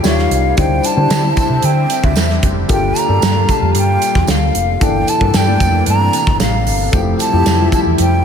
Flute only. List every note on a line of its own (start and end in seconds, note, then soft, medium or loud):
0.07 0.55 F5 medium
0.59 0.87 G5 medium
0.86 1.38 A5 loud
1.39 1.66 A5 medium
1.65 2.06 G5 medium
2.04 2.44 E5 medium
2.72 3.00 G5 loud
2.99 3.53 A#5 loud
3.51 3.76 A5 medium
3.77 4.32 G5 loud
4.31 4.84 F5 medium
4.83 5.11 G5 medium
5.09 5.38 A5 loud
5.37 5.88 G5 loud
5.89 6.37 A#5 loud
6.41 6.90 F5 medium
6.94 7.00 G5 medium
7.20 7.69 A5 loud
7.74 7.80 A5 medium
8.01 8.25 G5 medium